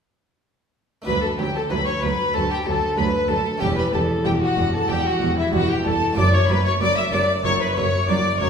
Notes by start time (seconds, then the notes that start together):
1.02 A3 D4 F#4
1.06 D2 F#3 B4 B5
1.22 A4 A5
1.38 D2 F#3 G4 G5
1.55 A4 A5
1.70 D2 F#3 B4 B5
1.87 C#5 C#6
2.02 D2 F#3 B4 B5
2.34 D2 F#3 A4 A5
2.50 G4 G5
2.66 D2 F#3 A4 A5
2.97 D2 F#3 B4 B5
3.28 D2 F#3 A4 A5
3.58 G3 A3 C#4 G4 G5
3.62 E1 E2 G4
3.76 B4 B5
3.92 E1 E2 G3 A4 A5
4.24 E1 E2 G3 G4 G5
4.42 F#4 F#5
4.57 E1 E2 G3
4.73 A4 A5
4.88 E1 E2 G3 G4 G5
5.06 F#4 F#5
5.20 E1 E2 G3
5.37 E4 E5
5.52 E1 E2 G3 F#4 F#5
5.69 G4 G5
5.85 E1 E2 G3 A4 A5
6.13 F#2 A3 D4 F#4
6.17 F#1 F#2 F#3 D5 D6
6.33 C#5 C#6
6.48 F#1 F#2 F#3 B4 B5
6.65 C#5 C#6
6.80 F#1 F#2 F#3 D5 D6
6.97 E5 E6
7.12 F#1 F#2 F#3 D5 D6
7.44 F#1 F#2 F#3 C#5 C#6
7.61 B4 B5
7.76 F#1 F#2 F#3 C#5 C#6
8.08 F#1 F#2 F#3 D5 D6
8.40 F#1 F#2 F#3 C#5 C#6